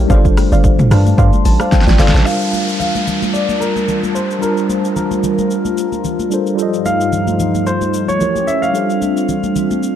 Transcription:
Already playing: A3 E4 G4 A#4 C#5
0.06 G1 G3 D4 D#4 C5 D5, kick, shaker
0.10 A4 C5 F5
0.16 F4
0.25 kick, shaker
0.37 cross-stick, open hi-hat, high conga, shaker
0.52 G1 C5 D5 F5, shaker
0.64 kick, low conga, shaker
0.79 mid tom, high conga, shaker
0.91 G2 C5 D5 F5 A5, cross-stick, open hi-hat, low conga, shaker
1.06 high conga, shaker
1.18 G2 C5 D5 F5 C6, kick, shaker
1.33 high conga, shaker
1.45 A1 A5, open hi-hat, shaker
1.60 C5 D5 F5, cross-stick, high conga, shaker
1.72 G5, kick, snare, low conga, shaker
1.81 snare
1.87 A1 F4 D5, snare, high conga, shaker
1.99 G1 A4 C5 D5 F5, snare, open hi-hat, low conga, shaker
2.08 snare
2.14 A1 C5 A5, snare, shaker
2.22 G3 D4 F4 F5, downlifter, shaker
2.26 G3 F4 A#4 A5
2.41 shaker
2.53 high conga, shaker
2.68 shaker
2.80 F5, low conga, shaker
2.95 high conga, shaker
3.07 low conga, shaker
3.22 high conga, shaker
3.34 D5, shaker
3.49 high conga, shaker
3.60 A#4, shaker
3.76 high conga, shaker
3.88 low conga, shaker
4.03 high conga, shaker
4.15 C5, shaker
4.31 shaker
4.39 G3 D4 F4 A#4, shaker
4.44 A#4 A5
4.53 C5
4.57 shaker
4.69 high conga, shaker
4.85 shaker
4.96 A#4, low conga, shaker
5.11 high conga, shaker
5.24 low conga, shaker
5.39 high conga, shaker
5.51 shaker
5.65 high conga, shaker
5.78 shaker
5.92 high conga, shaker
6.04 low conga, shaker
6.19 high conga, shaker
6.30 G3 D4 F4 A4 C5, shaker
6.47 shaker
6.55 G2 F3 G3 D#4 F4 A4, shaker
6.61 C5 D#5
6.74 shaker
6.86 F5, high conga, shaker
7.01 shaker
7.12 low conga, shaker
7.27 high conga, shaker
7.40 low conga, shaker
7.55 high conga, shaker
7.67 C5, shaker
7.81 high conga, shaker
7.94 shaker
8.08 C#5, high conga, shaker
8.19 A3 C#4 E4 G4 A#4 C#5, low conga, shaker
8.36 high conga, shaker
8.47 E5, shaker
8.62 F5, shaker
8.71 G3 C4 D4 F4 A4, shaker
8.77 C5 F5
8.90 shaker
9.02 high conga, shaker
9.17 shaker
9.29 low conga, shaker
9.44 high conga, shaker
9.56 low conga, shaker
9.71 high conga, shaker
9.83 shaker

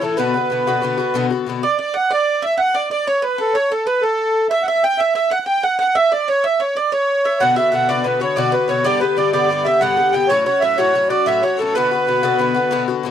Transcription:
0.01 A2 E3 C#4 E4 A4
0.17 B2 D3 B3 F#4 B4
0.34 D3 B3 F#4
0.50 B2 D3 B3 F#4
0.67 B2 D3 B3 F#4
0.82 B2 D3 B3 F#4
0.98 D3 B3 F#4
1.14 B2 D3 B3 F#4
1.30 D3 B3 F#4
1.46 B2 D3 B3 F#4
1.63 D5
1.79 D5
1.94 F#5
2.10 D5
2.42 E5
2.58 F#5
2.74 D5
2.91 D5
3.07 C#5
3.22 B4
3.38 A4
3.54 C#5
3.72 A4
3.86 B4
4.02 A4
4.50 E5
4.62 F#5
4.67 E5
4.84 G5
4.98 E5
5.15 E5
5.30 F#5
5.42 F#5 G5
5.47 G5
5.63 F#5
5.79 F#5
5.95 E5
6.12 D5
6.28 C#5
6.44 E5
6.60 C#5
6.76 D5
6.92 C#5
7.24 E5
7.40 B2 D3 B3 F#4 F#5
7.55 B3 F#4 E5
7.59 D3
7.72 B2 D3 B3 F#4 F#5
7.88 B2 D3 B3 F#4 D5
8.04 B2 D3 B3 F#4 B4
8.20 D3 B3 F#4 C#5
8.36 B2 D3 B3 F#4 D5
8.52 D3 B3 F#4 B4
8.68 B2 D3 B3 F#4 C#5
8.84 G2 D3 B3 G4 D5
9.00 D3 B3 G4 B4
9.17 G2 D3 B3 G4 D5
9.32 G2 D3 B3 G4 D5
9.49 G2 D3 B3 G4 D5
9.64 D3 B3 G4 E5
9.81 G2 D3 B3 G4 F#5
9.97 D3 B3 G4
10.12 G2 D3 B3 G4 G5
10.28 A2 F#3 C#4 F#4 C#5
10.45 F#3 C#4 F#4 C#5
10.60 A2 F#3 C#4 F#4 E5
10.78 A2 F#3 C#4 F#4 C#5
10.94 A2 F#3 C#4 F#4
11.09 F#3 C#4 F#4 D5
11.26 A2 F#3 C#4 F#4 E5
11.43 F#3 C#4 F#4 C#5
11.55 A4 C#5
11.59 A2 F#3 C#4 F#4 A4
11.65 C#5
11.74 B2 D3 B3 F#4 B4
11.91 D3 B3 F#4
12.07 B2 D3 B3 F#4
12.23 B2 D3 B3 F#4
12.39 B2 D3 B3 F#4
12.54 D3 B3 F#4
12.71 B2 D3 B3 F#4
12.88 D3 B3 F#4
13.03 B2 D3 B3 F#4

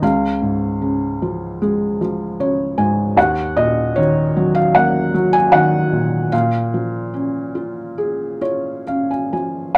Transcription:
0.02 C#2 F5
0.42 G#2
0.82 C#3
1.22 F3
1.62 G#3
2.01 F3
2.40 C#3 C#5
2.78 G#2 G#5
3.16 D#2 F#5
3.57 A#2 D#5
3.96 D#3 C#5
4.37 F#3
4.55 F5
4.75 A#3 F#5
5.14 F#3
5.33 G#5
5.52 D#3 F#5
5.92 A#2
6.32 A#2 F5
6.74 F3
7.14 C#4
7.55 F4
7.98 G#4
8.41 F4 C#5
8.87 C#4 F5
9.11 G#5
9.33 F3 G#5
9.75 F#5

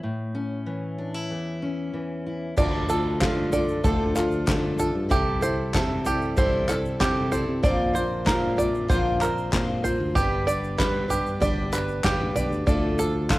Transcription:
Already playing: A3
0.03 A2
0.35 C#4
0.66 E3
0.98 D4
1.14 E4
1.30 E2
1.62 C#4
1.94 E3
2.26 E4
2.57 D2 D3 F3 A3 D4 F4 A4 D5, kick, floor tom, crash, shaker
2.89 F3 A3 D4 F4 A4 D5, shaker
3.20 D3 F3 A3 D4 F4 A4 C5, kick, snare, clap, shaker
3.52 F3 A3 D4 F4 A4 D5, floor tom, shaker
3.68 shaker
3.84 D2 D3 F3 A3 D4 F4 A4 C5, kick, floor tom, shaker
4.15 F3 A3 D4 F4 A4 D5, clap, shaker
4.31 shaker
4.46 D3 F3 A3 D4 F4 A4 D5, kick, snare, clap, shaker
4.78 F3 A3 D4 F4 A4 D5, floor tom, shaker
4.95 G2
5.09 C2 C3 E3 G3 C4 E4 G4 A4 E5, kick, floor tom, shaker
5.41 G3 C4 E4 A4 C5 E5, shaker
5.73 C3 G3 C4 E4 A4 E5, kick, snare, clap, shaker
6.04 G3 C4 E4 G4 A4 D5, floor tom, shaker
6.22 shaker
6.37 C2 C3 E3 G3 C4 E4 A4 C5 D5, kick, floor tom, shaker
6.68 G3 C4 E4 A4 D5, clap, shaker
6.85 shaker
6.99 C3 G3 C4 E4 G4 A4 G5, kick, snare, clap, shaker
7.31 G3 C4 E4 A4 C5 D5, floor tom, shaker
7.49 C3
7.63 A#1 A#2 D3 F3 A#3 C4 D4 F4 A#4 C5 D5, kick, floor tom, shaker
7.94 F3 A#3 C4 D4 F4 A#4 C5, shaker
8.25 A#2 F3 A#3 C4 D4 F4 A#4 C5, kick, snare, clap, shaker
8.29 A#4 F5
8.57 F3 A#3 C4 D4 F4 A#4 C5 D5 E5, floor tom, shaker
8.75 shaker
8.88 A#1 A#2 D3 F3 A#3 C4 D4 F4 A#4 C5, kick, floor tom, shaker
9.20 F3 A#3 C4 D4 F4 A#4 C5 D5, clap, shaker
9.38 shaker
9.51 A#2 F3 A#3 C4 D4 F4 A#4 C5, kick, snare, clap, shaker
9.83 F3 A#3 C4 D4 F4 A#4 C5, floor tom, shaker
10.00 D2
10.15 G1 G2 G3 B3 D4 G4 B4 D5, kick, floor tom, shaker
10.46 G3 B3 D4 G4 B4 D5, shaker
10.64 shaker
10.77 G2 G3 B3 D4 G4 B4 D5, kick, snare, clap, shaker
11.08 G3 B3 D4 G4 B4 D5, floor tom, shaker
11.26 shaker
11.40 G1 G3 B3 D4 G4 B4 D5, kick, floor tom, shaker
11.72 G3 B3 D4 G4 B4 D5, clap, shaker
11.88 shaker
12.04 G1 G3 B3 D4 G4 B4 F5, kick, snare, clap, shaker
12.20 A1
12.35 B1 G3 B3 D4 G4 B4 D5, floor tom, shaker
12.50 D2, shaker
12.66 D2 D3 F3 A3 D4 F4 A4 D5, kick, floor tom, shaker
12.98 F3 A3 D4 F4 A4 C5, shaker
13.30 D3 F3 A3 D4 F4 A4 D5, kick, snare, clap, shaker

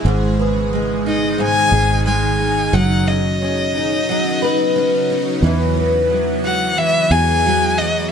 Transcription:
Already playing: C#3 G#3 C#4 E4 G#4
0.04 G#1 G#2 B2 D#3 D#4
0.39 B3
0.73 G#3
1.06 D#4 D#5
1.38 G#2 G#5
1.72 G#1 G#4
2.06 G#3 G#5
2.39 D#4
2.73 F#1 C#3 F#3 B3 D#4 F#4 F#5
3.07 C#4 D#5
3.42 C#4
3.75 D#4
4.09 F#3
4.42 B4
4.76 C#4
5.10 D#4
5.43 E2 E3 G#3 B3
5.77 B3
6.10 F#3
6.44 F#4 F#5
6.77 E3 E5
7.11 E2 G#4 G#5
7.46 F#3
7.78 F#4 D#5

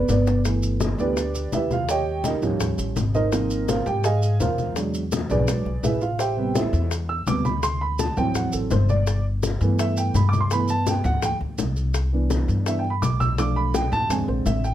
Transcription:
0.09 G1 B3 B4 D5, low bongo, high conga, maracas
0.27 low bongo, high conga, maracas
0.45 E3 A3 B3, high bongo, maracas
0.63 high conga, maracas
0.80 high bongo, high conga, maracas
0.98 D2 E3 A3 B3 D4 G4 B4 D5, high bongo, high conga, maracas
1.16 high bongo, high conga, maracas
1.34 high bongo, high conga, maracas
1.52 D#2 E4 G4 B4 E5, high bongo, low bongo, high conga, maracas
1.71 F4 F5, high bongo, high conga, maracas
1.89 G4 C#5 D#5 G5, high bongo, high conga, maracas
2.06 high conga
2.24 D#4 G4 A#4 D#5, high bongo, high conga, maracas
2.42 D#2 F3 G3 C#4, high bongo, high conga, low conga, maracas
2.60 high bongo, high conga, low conga, maracas
2.78 A1, high bongo, high conga, maracas
2.96 G#1, high bongo, low bongo, high conga, maracas
3.14 D#4 A#4 C5 D#5, high bongo, high conga, maracas
3.32 F3 A#3 C4, high bongo, high conga, maracas
3.50 high conga, maracas
3.69 F4 A#4 C5 F5, high bongo, high conga, maracas
3.86 G#2 G4 G5, high bongo, high conga, maracas
4.04 G#4 D#5 F5 G#5, high bongo, high conga, maracas
4.22 high bongo, high conga, maracas
4.40 E2 F4 A#4 C5 F5, high bongo, low bongo, high conga, maracas
4.58 high bongo, high conga, maracas
4.76 F#3 G#3 D4, high bongo, high conga, maracas
4.94 high conga, maracas
5.12 high bongo, high conga, maracas
5.29 B1 D4 G#4 B4 D5, high bongo, high conga, low conga, maracas
5.48 F#3 G#3 D4, high bongo, high conga, maracas
5.65 B1, high bongo, high conga
5.83 A1 E4 G#4 B4 E5, high bongo, low bongo, high conga, maracas
6.01 F4 F5, high bongo, maracas
6.19 G4 C5 E5 G5, high bongo, high conga, maracas
6.37 C3 G3 B3, high conga
6.55 E4 A4 C5 E5, high bongo, high conga, maracas
6.73 E2, high bongo, high conga, maracas
6.91 high bongo, high conga, maracas
7.09 E6, high bongo, high conga
7.27 D2 C3 G3 B3 D6, high bongo, low bongo, high conga, maracas
7.45 B5, high bongo, high conga, maracas
7.63 C6, high bongo, high conga, maracas
7.81 B5, high conga
7.99 A5, high bongo, high conga, maracas
8.17 D2 E3 F#3 C4 G5, high bongo, high conga, low conga, maracas
8.35 F#5, high bongo, high conga, low conga, maracas
8.53 A1 A4, high bongo, high conga, maracas
8.71 G1 C5, high bongo, low bongo, high conga, maracas
8.89 D5, high bongo, high conga, maracas
9.07 high bongo, high conga, maracas
9.25 high conga
9.43 high bongo, high conga, maracas
9.61 G2 E3 A3 B3, high bongo, high conga, maracas
9.79 E5, high bongo, high conga, maracas
9.97 G5, high bongo, high conga, maracas
10.14 G2 B5, high bongo, low bongo, high conga, maracas
10.29 D6
10.33 high bongo, high conga, maracas
10.41 C6
10.51 E3 A3 B3 B5, high bongo, high conga, maracas
10.68 A5, high conga, maracas
10.87 G5, high bongo, high conga, maracas
11.04 D2 F#5, high bongo, high conga, low conga, maracas
11.22 G5, high bongo, high conga, low conga, maracas
11.41 D2, high bongo, high conga
11.58 C2, high bongo, low bongo, high conga, maracas
11.76 high bongo, maracas
11.94 high bongo, high conga, maracas
12.13 E3 B3 D4, high conga
12.30 high bongo, high conga, maracas
12.48 G2, high bongo, high conga, maracas
12.66 E3 B3 D4 E5, high bongo, high conga, maracas
12.79 G5
12.84 high bongo, high conga
12.90 B5
13.02 B1 D6, high bongo, low bongo, high conga, maracas
13.20 E6, high bongo, high conga, maracas
13.38 F3 A3 D4 D6, high bongo, high conga, maracas
13.56 B5, high conga
13.74 G5, high bongo, high conga, maracas
13.92 E2 A5, high bongo, high conga, low conga, maracas
14.10 D3 G#3 C4 G#5, high bongo, high conga, low conga, maracas
14.28 A#1 C5, high bongo, high conga
14.46 A1 E5, high bongo, low bongo, high conga, maracas
14.64 G5, high bongo, maracas

